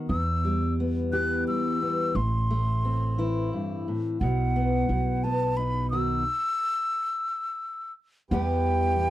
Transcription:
0.09 2.15 E2 medium
0.09 1.43 E2 medium
0.09 0.74 E6 medium
0.45 1.46 G3 soft
0.80 1.81 B3 soft
1.12 2.11 E3 medium
1.12 2.11 G4 medium
1.12 1.44 F#6 medium
1.47 2.15 G3 soft
1.47 2.17 E6 medium
1.82 2.16 B3 soft
2.15 3.48 A1 medium
2.15 3.87 A2 medium
2.15 3.53 C6 medium
2.50 4.17 A3 soft
2.85 4.17 C4 medium
3.18 4.17 E3 medium
3.18 5.92 E4 medium
3.53 3.87 G2 medium
3.88 4.22 A2 medium
4.20 4.86 B1 medium
4.20 4.86 B2 medium
4.20 5.25 F#5 medium
4.56 4.86 B3 soft
4.89 6.22 B1 medium
4.89 5.92 B2 medium
5.24 6.23 B3 soft
5.24 5.58 A5 medium
5.57 6.22 D#4 soft
5.57 5.90 B5 medium
5.90 6.22 D#3 medium
5.90 6.23 F#4 medium
5.90 7.92 E6 medium
8.30 9.10 E2 medium
8.30 8.98 E2 medium
8.30 9.10 E3 medium
8.30 9.10 G3 medium
8.30 9.10 B3 medium
8.30 9.10 G4 medium
8.30 9.10 G5 medium
8.99 muted steel-string acoustic guitar stroke medium

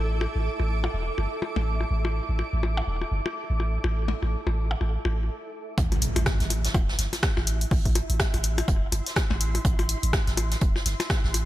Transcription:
0.00 0.27 A1 loud
0.00 5.29 E4 medium
0.00 5.29 A4 medium
0.00 5.32 A4 medium
0.00 5.29 E5 medium
0.00 5.29 D6 medium
0.21 percussion blips medium
0.35 0.49 A1 medium
0.60 0.88 A1 loud
0.60 percussion blips soft
0.84 percussion blips medium
0.94 1.10 E1 medium
1.18 1.27 G1 loud
1.18 percussion blips soft
1.42 percussion blips medium
1.56 1.84 A1 loud
1.56 percussion blips medium
1.81 percussion blips soft
1.91 2.20 A1 loud
2.05 percussion blips medium
2.29 2.42 A1 medium
2.39 percussion blips soft
2.53 2.81 A1 loud
2.63 percussion blips medium
2.77 percussion blips medium
2.87 3.04 E1 medium
3.02 percussion blips soft
3.12 3.20 G1 loud
3.26 percussion blips medium
3.50 3.78 A1 loud
3.60 percussion blips soft
3.84 4.14 A1 loud
3.84 percussion blips medium
4.08 percussion blips medium
4.23 4.36 A1 medium
4.23 percussion blips soft
4.47 4.75 A1 loud
4.47 percussion blips medium
4.71 percussion blips medium
4.81 4.97 A1 medium
4.81 percussion blips soft
5.05 5.29 A1 medium
5.05 percussion blips medium
5.78 6.07 A1 loud
5.78 11.45 E4 medium
5.78 11.45 E5 medium
5.78 kick loud
5.78 closed hi-hat medium
5.78 percussion blips medium
5.78 impact medium
5.92 closed hi-hat soft
5.92 percussion blips soft
6.01 closed hi-hat medium
6.01 closed hi-hat loud
6.16 6.29 A1 medium
6.16 closed hi-hat medium
6.16 percussion blips medium
6.26 kick loud
6.26 cross-stick medium
6.26 snare loud
6.26 closed hi-hat medium
6.26 percussion blips soft
6.40 6.68 A1 loud
6.40 snare medium
6.40 closed hi-hat soft
6.50 closed hi-hat medium
6.50 percussion blips soft
6.65 snare medium
6.65 closed hi-hat medium
6.74 6.91 E1 medium
6.74 kick loud
6.74 closed hi-hat medium
6.74 percussion blips medium
6.89 snare medium
6.99 7.07 G1 loud
6.99 snare soft
6.99 closed hi-hat medium
6.99 closed hi-hat loud
7.13 snare medium
7.13 closed hi-hat medium
7.13 percussion blips soft
7.23 kick loud
7.23 cross-stick loud
7.23 snare loud
7.23 closed hi-hat medium
7.23 percussion blips medium
7.37 7.65 A1 loud
7.37 snare soft
7.37 percussion blips medium
7.47 closed hi-hat medium
7.47 closed hi-hat loud
7.54 11.45 C6 medium
7.61 closed hi-hat medium
7.71 8.01 A1 loud
7.71 kick loud
7.71 open hi-hat medium
7.71 percussion blips soft
7.85 kick medium
7.85 closed hi-hat soft
7.95 closed hi-hat medium
7.95 percussion blips medium
8.10 8.23 A1 medium
8.10 closed hi-hat medium
8.19 kick loud
8.19 cross-stick loud
8.19 snare loud
8.19 closed hi-hat medium
8.19 percussion blips medium
8.34 8.62 A1 loud
8.34 closed hi-hat soft
8.34 percussion blips soft
8.43 closed hi-hat medium
8.43 closed hi-hat loud
8.58 closed hi-hat medium
8.58 percussion blips medium
8.68 8.84 E1 medium
8.68 kick loud
8.68 closed hi-hat medium
8.68 percussion blips medium
8.92 9.01 G1 loud
8.92 closed hi-hat medium
8.92 percussion blips soft
9.06 snare soft
9.06 closed hi-hat medium
9.16 kick loud
9.16 cross-stick loud
9.16 snare loud
9.16 closed hi-hat medium
9.16 percussion blips soft
9.16 percussion blips medium
9.30 9.59 A1 loud
9.30 snare soft
9.30 percussion blips medium
9.41 closed hi-hat loud
9.41 closed hi-hat medium
9.55 closed hi-hat medium
9.55 percussion blips soft
9.65 9.94 A1 loud
9.65 kick loud
9.65 closed hi-hat loud
9.65 percussion blips medium
9.79 closed hi-hat soft
9.79 percussion blips medium
9.89 closed hi-hat loud
9.89 closed hi-hat medium
10.03 10.16 A1 medium
10.03 closed hi-hat medium
10.13 kick loud
10.13 cross-stick loud
10.13 snare loud
10.13 closed hi-hat medium
10.13 percussion blips medium
10.13 percussion blips soft
10.27 10.55 A1 loud
10.27 snare soft
10.27 closed hi-hat soft
10.37 closed hi-hat medium
10.37 closed hi-hat loud
10.37 percussion blips medium
10.51 snare medium
10.51 closed hi-hat medium
10.61 10.78 E1 medium
10.61 kick loud
10.61 closed hi-hat medium
10.61 percussion blips soft
10.76 snare medium
10.76 percussion blips soft
10.86 10.94 G1 loud
10.86 snare soft
10.86 closed hi-hat loud
10.86 closed hi-hat medium
11.00 snare medium
11.00 closed hi-hat medium
11.00 percussion blips medium
11.10 kick loud
11.10 cross-stick medium
11.10 snare loud
11.10 closed hi-hat medium
11.10 percussion blips medium
11.24 11.45 A1 loud
11.24 snare soft
11.34 closed hi-hat loud
11.34 closed hi-hat medium
11.34 percussion blips soft

